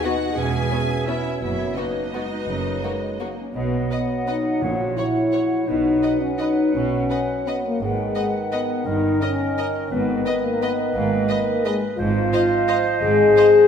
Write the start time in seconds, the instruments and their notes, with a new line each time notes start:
Already playing: french horn section B3 D#4
0.03 bassoon B2, violin section B3 F#4 F#5, viola section F#4, clarinet F#4, flute section D#5
0.36 double bass section E1, cello section E2, bassoon B2, clarinet C#4, french horn section C#4, viola section G#4, flute section E5, violin section G#5
0.71 violin section B3 C#4
1.06 bassoon B2, violin section B3 C#4 E5, clarinet C#4, viola section E4, flute section C#5
1.41 double bass section F#1, cello section F#2, bassoon B2, french horn section B3 F#4, clarinet B3, viola section E4, flute section C#5, violin section E5
1.76 bassoon B2, clarinet A#3, violin section B3 F#4 D#5, viola section D#4, flute section B4
2.13 clarinet G#3, violin section B3 F#4
2.48 double bass section F#1, cello section F#2, bassoon C#3, clarinet F#3, french horn section A#3
2.84 clarinet G#3, violin section A#3 F#4
3.20 violin section A#3 F#4, clarinet A#3
3.37 french horn section C#4
3.53 double bass section B1, cello section B2, bassoon F#3, french horn section B3, clarinet D#5, flute section F#5
3.90 viola section B4, violin section D#5 F#5
4.27 french horn section D#4, viola section B4, violin section D#5 F#5
4.62 double bass section A#1, timpani A#2, cello section A#2, french horn section F#4, clarinet C#5
4.96 french horn section E4, viola section C#5, violin section C#5 F#5
5.32 violin section C#5 F#5, viola section C#5
5.67 double bass section B1, cello section B2, bassoon F#3, french horn section D#4, clarinet B4, flute section F#5
6.03 viola section B4, violin section D#5 F#5
6.20 french horn section C#4
6.38 french horn section D#4, viola section B4, violin section D#5 F#5
6.73 double bass section B1, cello section B2, french horn section C#4
7.09 viola section B4, violin section D#5 F#5
7.46 french horn section B3, viola section B4, violin section D#5 F#5
7.65 french horn section A#3
7.80 double bass section G#1, cello section G#2, bassoon D#3, french horn section G#3, clarinet B4, flute section F#5
8.15 viola section B4, violin section D#5 F#5
8.52 french horn section B3, viola section B4, violin section D#5 F#5
8.86 double bass section G1, cello section G2, french horn section D#4, clarinet A#4, flute section D#5
9.20 french horn section C#4, viola section A#4, violin section D#5
9.58 viola section A#4, violin section D#5
9.90 double bass section G#1, cello section G#2, bassoon D#3, french horn section B3, clarinet B4, flute section D#5
10.26 viola section B4, violin section D#5
10.43 french horn section A#3
10.61 french horn section B3, viola section B4, violin section D#5
10.95 double bass section G#1, cello section G#2, french horn section A#3
11.29 viola section B4, violin section D#5
11.65 french horn section G#3, viola section B4, violin section D#5
11.97 double bass section G#1, cello section G#2, bassoon F3, french horn section F4, clarinet C5, flute section D#5
12.32 viola section C5, violin section D#5 F5
12.68 viola section C5, violin section D#5 F5
13.02 double bass section G#1, cello section G#2, french horn section G#4
13.36 viola section C5, violin section D#5 F5